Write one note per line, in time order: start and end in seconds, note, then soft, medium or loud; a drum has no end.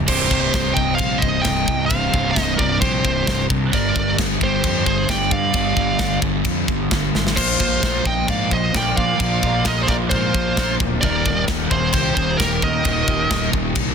0.08 0.27 C1 loud
0.08 1.88 C2 medium
0.08 1.89 G2 medium
0.08 1.90 C3 medium
0.08 0.72 G4 medium
0.08 0.73 C5 medium
0.08 kick loud
0.08 crash loud
0.08 china medium
0.31 0.49 C1 medium
0.31 kick medium
0.53 0.72 C1 medium
0.53 kick loud
0.53 snare loud
0.53 china medium
0.74 0.95 C1 medium
0.74 0.97 D#5 medium
0.74 0.94 G5 loud
0.74 kick medium
0.95 1.18 C5 medium
0.95 1.21 F5 loud
0.95 china medium
0.99 1.18 A#1 medium
0.99 kick loud
1.18 1.42 C5 medium
1.18 1.41 D#5 medium
1.22 1.41 C1 medium
1.22 kick loud
1.41 1.86 D#5 medium
1.41 1.85 G5 loud
1.41 kick loud
1.41 snare loud
1.41 china medium
1.46 1.64 C1 medium
1.68 1.87 C2 medium
1.68 kick medium
1.86 3.70 C2 medium
1.86 2.31 C5 medium
1.86 2.35 F5 loud
1.86 china medium
1.91 2.09 C1 loud
1.91 3.70 G2 loud
1.91 3.71 C3 loud
1.91 kick loud
2.13 2.32 C1 medium
2.13 kick medium
2.31 2.55 C5 medium
2.31 2.57 D#5 loud
2.36 2.55 C1 medium
2.36 kick loud
2.36 snare loud
2.36 china medium
2.56 2.77 C1 loud
2.56 2.78 A#4 medium
2.56 2.81 D5 medium
2.56 kick medium
2.79 3.00 A#1 loud
2.79 3.44 G4 medium
2.79 3.45 C5 medium
2.79 kick loud
2.79 china medium
3.05 3.23 C1 loud
3.05 kick medium
3.27 3.46 C1 medium
3.27 kick loud
3.27 snare loud
3.27 china medium
3.50 3.69 C2 medium
3.50 kick medium
3.72 3.92 G1 loud
3.72 5.51 G2 medium
3.72 5.52 D3 loud
3.72 5.54 G3 loud
3.72 4.15 A#4 loud
3.72 4.16 D5 loud
3.72 kick loud
3.72 china medium
3.96 4.14 G1 medium
3.96 kick medium
4.18 4.37 G1 medium
4.18 kick loud
4.18 snare loud
4.18 china medium
4.41 4.60 G1 medium
4.41 4.85 G4 medium
4.41 4.85 C5 medium
4.41 kick medium
4.64 4.82 F2 loud
4.64 kick loud
4.64 china medium
4.86 5.05 G1 medium
4.86 5.09 G#4 medium
4.86 5.10 C5 medium
4.86 kick medium
5.09 5.27 G1 medium
5.09 5.31 D5 medium
5.09 5.32 G5 loud
5.09 kick loud
5.09 snare loud
5.09 china medium
5.31 5.50 G2 medium
5.31 6.19 D5 medium
5.31 6.19 F5 medium
5.31 kick medium
5.52 5.73 G1 loud
5.52 7.34 G2 loud
5.52 7.35 D3 medium
5.52 7.36 G3 loud
5.52 kick loud
5.52 china medium
5.77 5.95 G1 medium
5.77 kick medium
5.99 6.18 G1 medium
5.99 kick loud
5.99 snare loud
5.99 china medium
6.22 6.41 G1 medium
6.22 kick medium
6.44 6.64 F2 medium
6.44 kick loud
6.44 china medium
6.68 6.87 G1 medium
6.68 kick medium
6.91 7.10 G1 medium
6.91 kick loud
6.91 snare loud
6.91 china medium
7.15 7.37 G#1 medium
7.15 snare medium
7.27 snare loud
7.33 9.16 A#2 medium
7.33 9.17 F3 loud
7.33 13.95 A#3 medium
7.33 9.19 A#3 loud
7.33 13.95 F4 medium
7.33 10.97 C5 medium
7.33 8.07 C5 medium
7.33 10.97 D5 medium
7.37 7.56 A#1 loud
7.37 8.02 F4 medium
7.37 kick loud
7.37 china medium
7.37 crash loud
7.60 7.79 A#1 medium
7.60 kick medium
7.83 8.01 A#1 medium
7.83 kick loud
7.83 snare loud
7.83 china medium
8.05 8.24 A#1 medium
8.05 8.27 D#5 medium
8.05 8.30 G5 medium
8.05 kick medium
8.28 8.47 G#2 loud
8.28 8.50 D5 medium
8.28 8.53 F5 loud
8.28 kick loud
8.28 china medium
8.51 8.70 A#1 medium
8.51 8.73 C5 medium
8.51 8.73 D#5 loud
8.51 kick medium
8.74 8.93 A#1 medium
8.74 8.96 D5 medium
8.74 8.96 G5 loud
8.74 kick loud
8.74 snare loud
8.74 china medium
8.97 9.16 A#2 medium
8.97 9.63 D5 medium
8.97 9.67 F5 loud
8.97 kick medium
9.17 9.38 A#1 loud
9.17 10.99 A#2 medium
9.17 11.00 F3 medium
9.17 11.03 A#3 loud
9.17 kick loud
9.17 china medium
9.43 9.61 A#1 medium
9.43 kick medium
9.65 9.84 A#1 medium
9.65 9.82 A#4 medium
9.65 9.82 D#5 loud
9.65 kick loud
9.65 snare loud
9.65 china medium
9.83 9.88 G#4 medium
9.83 9.88 C5 medium
9.88 10.07 A#1 loud
9.88 9.96 A#4 medium
9.88 9.95 D5 medium
9.88 kick medium
10.09 10.30 G#2 loud
10.09 10.75 C5 medium
10.09 kick loud
10.09 china medium
10.15 10.77 F4 medium
10.34 10.52 A#1 medium
10.34 kick medium
10.57 10.76 A#1 medium
10.57 kick loud
10.57 snare loud
10.57 china medium
10.80 10.98 D1 medium
10.80 kick medium
11.01 11.21 D#1 loud
11.01 12.82 D#2 medium
11.01 12.83 A#2 loud
11.01 13.95 D#3 medium
11.01 12.83 D#3 loud
11.01 13.95 G4 loud
11.01 11.46 A#4 medium
11.01 11.44 D5 loud
11.01 kick loud
11.01 china medium
11.26 11.44 D#1 medium
11.26 kick medium
11.48 11.67 D#1 medium
11.48 kick loud
11.48 snare loud
11.48 china medium
11.71 11.89 D#1 medium
11.71 11.92 G#4 medium
11.71 11.92 C5 medium
11.71 kick loud
11.93 12.12 C2 medium
11.93 12.14 C5 medium
11.93 kick loud
11.93 china medium
11.98 12.17 G4 medium
12.15 12.35 D#1 medium
12.15 12.39 G#4 medium
12.15 12.37 C5 loud
12.15 kick medium
12.38 12.58 D#1 loud
12.38 12.61 G4 medium
12.38 12.62 A#4 medium
12.38 kick loud
12.38 snare loud
12.38 china medium
12.62 12.81 D#2 medium
12.62 13.50 A#4 medium
12.62 13.50 D#5 loud
12.62 kick medium
12.83 13.03 D#1 loud
12.83 13.95 D#2 medium
12.83 13.95 A#2 medium
12.83 13.95 D#3 loud
12.83 kick loud
12.83 china medium
13.08 13.26 D#1 medium
13.08 kick medium
13.30 13.49 D#1 medium
13.30 kick loud
13.30 snare loud
13.30 china medium
13.53 13.72 D#1 loud
13.53 kick medium
13.75 13.94 C2 medium
13.75 kick loud
13.75 china medium